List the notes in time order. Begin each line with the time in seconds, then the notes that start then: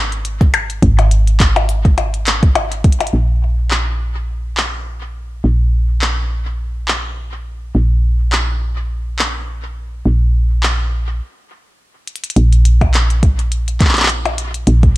Already playing: G#1
0.12 closed hi-hat
0.25 closed hi-hat
0.41 kick, closed hi-hat
0.54 closed hi-hat, percussion blips
0.70 closed hi-hat
0.82 G#1, kick, closed hi-hat
0.99 closed hi-hat, percussion blips
1.11 closed hi-hat
1.27 closed hi-hat
1.40 kick, clap, closed hi-hat
1.56 closed hi-hat, percussion blips
1.69 closed hi-hat
1.85 kick, closed hi-hat
1.98 closed hi-hat, percussion blips
2.14 closed hi-hat
2.27 clap, closed hi-hat
2.43 kick, closed hi-hat
2.55 closed hi-hat, percussion blips
2.72 closed hi-hat
2.84 kick, closed hi-hat
2.92 closed hi-hat
3.00 closed hi-hat, percussion blips
3.07 closed hi-hat
3.13 A#1
3.71 clap
4.57 clap
5.44 A#1
6.02 clap
6.88 clap
7.75 A#1
8.32 clap
9.19 clap
10.06 A#1
10.63 clap
12.07 closed hi-hat
12.16 closed hi-hat
12.24 closed hi-hat
12.30 closed hi-hat
12.36 A#1, closed hi-hat
12.53 closed hi-hat
12.65 closed hi-hat
12.81 kick, closed hi-hat, percussion blips
12.94 clap, closed hi-hat
13.10 closed hi-hat
13.23 kick, closed hi-hat
13.39 closed hi-hat
13.52 closed hi-hat
13.68 closed hi-hat
13.81 kick, clap, closed hi-hat
13.85 clap
13.89 clap
13.93 clap
13.97 clap, closed hi-hat
14.00 clap
14.03 clap
14.06 clap, closed hi-hat
14.26 closed hi-hat, percussion blips
14.38 closed hi-hat
14.54 closed hi-hat
14.67 A#1, closed hi-hat
14.83 kick, closed hi-hat